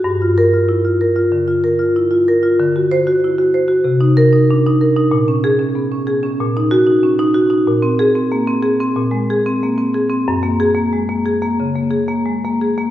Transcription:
0.04 1.27 G2 medium
0.22 0.47 F4 medium
0.38 0.63 A#4 medium
0.54 0.78 F4 medium
0.69 0.84 E4 medium
0.85 1.10 F4 medium
1.01 1.26 A#4 medium
1.16 1.41 F4 medium
1.32 1.57 D3 medium
1.48 1.73 F4 medium
1.64 1.89 A#4 medium
1.79 2.04 F4 medium
1.96 2.11 E4 medium
2.11 2.36 F4 medium
2.28 2.53 A#4 medium
2.43 2.59 F4 medium
2.60 3.83 D3 medium
2.76 3.01 F#4 medium
2.91 3.17 C5 medium
3.07 3.32 F#4 medium
3.24 3.39 E4 medium
3.38 3.64 F#4 medium
3.54 3.80 C5 medium
3.68 3.85 F#4 medium
3.84 5.08 C3 medium
4.01 4.27 D#4 medium
4.17 4.43 A#4 medium
4.33 4.58 D#4 medium
4.51 4.66 D4 medium
4.66 4.91 D#4 medium
4.81 5.06 A#4 medium
4.97 5.12 D#4 medium
5.11 6.37 A#2 medium
5.28 5.53 C#4 medium
5.44 5.70 G#4 loud
5.59 5.85 C#4 medium
5.75 5.92 B3 medium
5.92 6.18 C#4 medium
6.07 6.34 G#4 medium
6.23 6.40 C#4 medium
6.41 7.65 A#2 medium
6.57 6.82 D#4 medium
6.71 6.97 F#4 loud
6.87 7.13 D#4 medium
7.03 7.20 C#4 medium
7.19 7.46 D#4 medium
7.34 7.61 F#4 medium
7.50 7.68 D#4 medium
7.67 8.92 A#2 medium
7.82 8.09 C4 medium
7.99 8.26 G#4 loud
8.15 8.41 C4 medium
8.32 8.48 A#3 medium
8.47 8.73 C4 medium
8.63 8.89 G#4 medium
8.80 9.06 C4 medium
8.96 10.23 A#2 medium
9.11 9.38 G#3 medium
9.30 9.56 G#4 medium
9.46 9.72 C4 medium
9.63 9.79 A#3 medium
9.78 10.04 C4 medium
9.94 10.20 G#4 medium
10.10 10.26 C4 medium
10.28 11.55 F#2 medium
10.43 10.69 A#3 medium
10.60 10.86 G#4 loud
10.75 11.02 A#3 medium
10.93 11.09 G#3 medium
11.09 11.36 A#3 medium
11.26 11.52 G#4 medium
11.42 11.69 A#3 medium
11.60 11.86 C#3 medium
11.75 12.02 A#3 medium
11.91 12.18 G#4 medium
12.08 12.36 A#3 medium
12.26 12.43 G#3 medium
12.45 12.72 A#3 medium
12.62 12.90 G#4 medium
12.78 12.90 A#3 medium

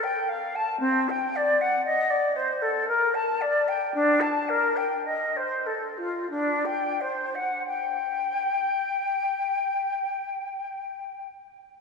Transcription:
0.03 0.30 G5 medium
0.28 0.56 F5 medium
0.55 0.79 A5 medium
0.79 1.10 C4 medium
1.09 1.37 G5 medium
1.35 1.62 D5 medium
1.60 1.84 F#5 medium
1.85 2.11 D#5 medium
2.10 2.37 D5 medium
2.36 2.63 C5 medium
2.62 2.87 A4 medium
2.88 3.15 A#4 medium
3.14 3.42 A5 medium
3.41 3.69 D5 medium
3.68 3.93 G5 medium
3.94 4.22 D4 medium
4.20 4.50 A5 medium
4.48 4.78 A#4 medium
4.76 5.04 G5 medium
5.05 5.38 D#5 medium
5.36 5.67 C5 medium
5.66 5.99 A4 soft
5.97 6.29 F4 soft
6.30 6.66 D4 medium
6.65 7.02 G5 soft
7.00 7.36 C5 soft
7.35 7.65 F#5 medium
7.66 11.27 G5 medium

